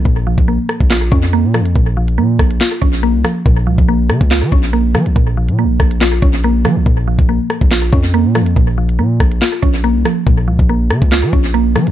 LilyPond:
<<
  \new Staff \with { instrumentName = "Synth pluck" } { \time 4/4 \key bes \minor \tempo 4 = 141 <bes, f bes des' f'>8 f8 bes4 f'8 des'8 bes8 f8 | bes,8 f8 bes4 f'8 des'8 bes8 f8 | bes,8 f8 bes4 f'8 des'8 bes8 f8 | bes,8 f8 bes4 f'8 des'8 bes8 f8 |
bes,8 f8 bes4 f'8 des'8 bes8 f8 | bes,8 f8 bes4 f'8 des'8 bes8 f8 | bes,8 f8 bes4 f'8 des'8 bes8 f8 | }
  \new Staff \with { instrumentName = "808-style bass" } { \clef bass \time 4/4 \key bes \minor bes,,8. bes,,8 r8 bes,,8. f,8. bes,16. f,16. | bes,,4 bes,8 bes,,8 r8 bes,,8. c,16 r8 | bes,,8 des,16 bes,,8. des16 des,8 f16 bes,,4 f16 bes,,16 | bes,,8. bes,16. bes,,16. bes,,4 bes,,4 f16 bes,,16 |
bes,,8. bes,,8 r8 bes,,8. f,8. bes,16. f,16. | bes,,4 bes,8 bes,,8 r8 bes,,8. c,16 r8 | bes,,8 des,16 bes,,8. des16 des,8 f16 bes,,4 f16 bes,,16 | }
  \new DrumStaff \with { instrumentName = "Drums" } \drummode { \time 4/4 <hh bd>8. <hh bd>16 r8 ss16 <hh bd>16 <hc sn>8 <hh bd>16 hh16 hh8 <hh ss>16 hh16 | <hh bd>8. hh16 r8 <bd ss>16 hh16 <hc sn>8 <hh bd>16 hh16 hh8 <hh ss>8 | <hh bd>8. <hh bd>16 r8 ss16 <hh bd>16 <hc sn>8 <hh bd>16 hh16 hh8 <hh ss>16 hh16 | <hh bd>8. hh16 r8 <bd ss>16 hh16 <hc sn>8 <hh bd>16 hh16 hh8 <hh ss>8 |
<hh bd>8. <hh bd>16 r8 ss16 <hh bd>16 <hc sn>8 <hh bd>16 hh16 hh8 <hh ss>16 hh16 | <hh bd>8. hh16 r8 <bd ss>16 hh16 <hc sn>8 <hh bd>16 hh16 hh8 <hh ss>8 | <hh bd>8. <hh bd>16 r8 ss16 <hh bd>16 <hc sn>8 <hh bd>16 hh16 hh8 <hh ss>16 hh16 | }
>>